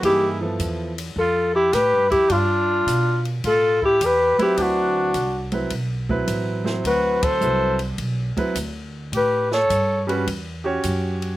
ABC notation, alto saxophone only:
X:1
M:4/4
L:1/8
Q:"Swing" 1/4=105
K:Dmix
V:1 name="Alto saxophone"
G z3 A G B G | =F3 z A G B G | F3 z4 z | B c2 z4 z |
B ^c2 z4 z |]